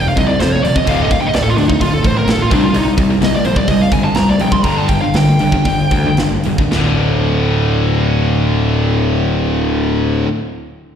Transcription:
Already playing: distorted electric guitar F2 C3
0.09 lead electric guitar F5
0.16 picked electric bass C2, distorted electric guitar F2 C3, lead electric guitar D#5, kick, open hi-hat
0.28 distorted electric guitar F2 C3, lead electric guitar D5
0.40 distorted electric guitar F2 C3, picked electric bass F2, lead electric guitar C5, snare, open hi-hat
0.53 lead electric guitar C#5
0.63 picked electric bass D#1, distorted electric guitar F2 C3, lead electric guitar D5, open hi-hat
0.75 distorted electric guitar F2 C3, lead electric guitar D#5, kick
0.85 picked electric bass D1, distorted electric guitar D2 A2 D3, kick, open hi-hat
0.89 lead electric guitar F5
1.02 lead electric guitar D#5
1.10 distorted electric guitar D2 A2, lead electric guitar F5, kick, open hi-hat
1.21 distorted electric guitar D2 A2, lead electric guitar G5
1.27 lead electric guitar D#5
1.33 picked electric bass D1, distorted electric guitar D2 A2, lead electric guitar D5, snare, open hi-hat
1.42 lead electric guitar A4
1.49 lead electric guitar F4
1.57 picked electric bass D1, distorted electric guitar D2 A2, lead electric guitar D4, open hi-hat
1.68 distorted electric guitar D2 A2, lead electric guitar D#4, kick
1.80 picked electric bass D1, distorted electric guitar D2 A2, lead electric guitar F4, kick, open hi-hat
1.94 lead electric guitar A4
2.03 picked electric bass A1, distorted electric guitar D2 A2, lead electric guitar C5, kick, open hi-hat
2.14 distorted electric guitar D2 A2, lead electric guitar A#4
2.26 picked electric bass D1, distorted electric guitar D2 A2, snare, open hi-hat
2.31 lead electric guitar A4
2.42 lead electric guitar F4
2.50 picked electric bass C2, distorted electric guitar C3 G3 C4, lead electric guitar D4, kick, open hi-hat
2.61 distorted electric guitar C3 G3, lead electric guitar F4
2.73 picked electric bass C2, distorted electric guitar C3 G3, open hi-hat
2.77 lead electric guitar D#4
2.97 picked electric bass C2, distorted electric guitar C3 G3, kick, open hi-hat
3.10 distorted electric guitar C3 G3
3.21 picked electric bass C2, distorted electric guitar C3 G3, lead electric guitar D#5, snare, open hi-hat
3.36 lead electric guitar D5
3.45 picked electric bass A#1, distorted electric guitar C3 G3, lead electric guitar C5, open hi-hat
3.56 distorted electric guitar C3 G3, lead electric guitar D5, kick
3.68 picked electric bass C2, distorted electric guitar C3 G3, lead electric guitar D#5, kick, open hi-hat
3.82 lead electric guitar F5
3.92 picked electric bass G1, distorted electric guitar C3 G3, lead electric guitar G#5, kick, open hi-hat
4.04 distorted electric guitar C3 G3, lead electric guitar A5
4.15 picked electric bass C2, distorted electric guitar C3 G3, lead electric guitar A#5, snare, open hi-hat
4.30 lead electric guitar D5
4.39 picked electric bass A#1, distorted electric guitar C3 G3, lead electric guitar G5, open hi-hat
4.52 distorted electric guitar C3 G3, lead electric guitar C6, kick
4.63 picked electric bass G1, distorted electric guitar G2 D3 G3, lead electric guitar A#5, kick, open hi-hat
4.78 lead electric guitar A5
4.88 distorted electric guitar G2 D3, lead electric guitar G5, kick, open hi-hat
5.01 distorted electric guitar G2 D3, lead electric guitar F5
5.14 picked electric bass G1, distorted electric guitar G2 D3, lead electric guitar G5, snare, open hi-hat
5.39 picked electric bass G1, distorted electric guitar G2 D3, open hi-hat
5.52 distorted electric guitar G2 D3, kick
5.65 picked electric bass G1, distorted electric guitar G2 D3, kick, open hi-hat
5.91 picked electric bass D2, distorted electric guitar G2 D3, kick, open hi-hat
6.06 distorted electric guitar G2 D3
6.17 picked electric bass G1, distorted electric guitar G2 D3, snare, open hi-hat
6.44 picked electric bass D#1, distorted electric guitar G2 D3, open hi-hat
6.58 distorted electric guitar G2 D3, kick
6.71 picked electric bass D1, distorted electric guitar D2 A2 D3, snare

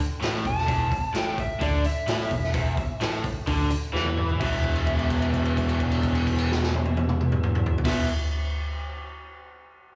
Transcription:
0.21 picked electric bass A1, overdriven electric guitar A2, snare, open hi-hat
0.35 snare
0.44 picked electric bass E1, overdriven electric guitar E2, electric slide guitar A5, kick, open hi-hat
0.58 snare
0.67 picked electric bass E1, overdriven electric guitar E2, kick, open hi-hat
0.92 muted overdriven electric guitar stroke, muted picked electric bass stroke, kick, open hi-hat
1.14 picked electric bass A1, overdriven electric guitar A2, electric slide guitar G5, snare, open hi-hat
1.38 electric slide guitar E5, muted picked electric bass stroke, muted overdriven electric guitar stroke, kick, open hi-hat
1.61 picked electric bass D2, overdriven electric guitar D3, electric slide guitar D5, kick, open hi-hat
1.84 electric slide guitar E5, muted picked electric bass stroke, muted overdriven electric guitar stroke, open hi-hat
2.07 picked electric bass A1, overdriven electric guitar A2, snare, open hi-hat
2.21 snare
2.31 picked electric bass E1, overdriven electric guitar E2, kick, open hi-hat
2.44 snare
2.54 picked electric bass E1, overdriven electric guitar E2, kick, open hi-hat
2.77 muted picked electric bass stroke, muted overdriven electric guitar stroke, kick, open hi-hat
3.00 picked electric bass A1, overdriven electric guitar A2, snare, open hi-hat
3.24 muted picked electric bass stroke, muted overdriven electric guitar stroke, kick, open hi-hat
3.47 picked electric bass D2, overdriven electric guitar D3, kick, open hi-hat
3.70 muted picked electric bass stroke, muted overdriven electric guitar stroke, open hi-hat
3.93 picked electric bass E2, overdriven electric guitar E3, snare
4.05 high tom
4.17 mid tom
4.29 floor tom
4.40 picked electric bass E1, overdriven electric guitar E2 B2, electric slide guitar E5, kick, crash
4.44 overdriven electric guitar E3
4.64 kick, crash
4.76 crash
4.87 kick, crash
4.99 crash
5.10 kick, crash
5.22 crash
5.34 kick, crash
5.45 crash
5.57 kick, crash
5.69 crash
5.80 kick, crash
5.92 crash
6.03 kick, crash
6.15 crash
6.27 kick, crash
6.38 crash
6.52 snare
6.63 snare
6.74 high tom
6.86 high tom
6.97 high tom
7.09 mid tom
7.21 mid tom
7.32 mid tom
7.43 mid tom
7.55 mid tom
7.66 floor tom
7.78 floor tom
7.84 picked electric bass E1, overdriven electric guitar E2 B2, electric slide guitar E5, kick, snare, crash
7.88 overdriven electric guitar E3

